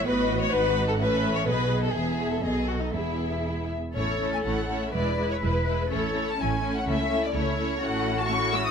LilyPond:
<<
  \new Staff \with { instrumentName = "Violin section" } { \time 2/4 \key e \major \tempo 4 = 125 dis''4 fis''4 | e''4 dis''4 | e''4 dis''4 | e''4. r8 |
\key a \major cis''8. gis''16 fis''8. e''16 | d''8. cis''16 b'4 | cis''8. a''16 gis''8. fis''16 | e''8. d''16 cis''4 |
\key fis \dorian fis''8. a''16 cis'''8 e'''16 dis'''16 | }
  \new Staff \with { instrumentName = "Violin section" } { \time 2/4 \key e \major b'8. cis''16 b'8. a'16 | b'8. cis''16 b'8. a'16 | gis'8. a'16 gis'8 fis'16 dis'16 | e'4. r8 |
\key a \major <e' cis''>8 <e' cis''>8 <e' cis''>8 <e' cis''>8 | <e' b'>8 <e' b'>8 <e' b'>8 <e' b'>8 | <e' a'>8 <e' a'>8 <e' a'>8 <e' a'>8 | <e' a'>8 <e' a'>8 <e' a'>8 <e' a'>8 |
\key fis \dorian <e' a'>4 <e' a'>4 | }
  \new Staff \with { instrumentName = "Viola section" } { \time 2/4 \key e \major << { fis'2 | a'4 gis'4 | gis'4 a'4 | gis'4. r8 |
\key a \major cis'8 cis'8 cis'8 cis'8 | e'8 e'8 e'8 e'8 | cis'8 cis'8 cis'8 cis'8 | cis'8 cis'8 cis'8 cis'8 |
\key fis \dorian cis'4 cis'4 | } \\ { b4 dis'4 | cis'4 b4 | b4 b4 | b4. r8 |
a8 a8 a8 a8 | gis8 gis8 gis8 gis8 | a8 a8 a8 a8 | a8 a8 a8 a8 |
a4 a8 gis8 | } >> }
  \new Staff \with { instrumentName = "Cello section" } { \clef bass \time 2/4 \key e \major a,4 gis,4 | a,4 b,4 | e,4 b,4 | e,4. r8 |
\key a \major a'2 | b'2 | a'4 cis'4~ | cis'4 e'4 |
\key fis \dorian fis'2 | }
  \new Staff \with { instrumentName = "Double bass section" } { \clef bass \time 2/4 \key e \major a,,4 gis,,4 | a,,4 b,,4 | e,,4 b,,4 | e,,4. r8 |
\key a \major a,,4 a,,4 | e,,4 e,,4 | a,,4 a,,4 | cis,4 cis,4 |
\key fis \dorian a,,2 | }
>>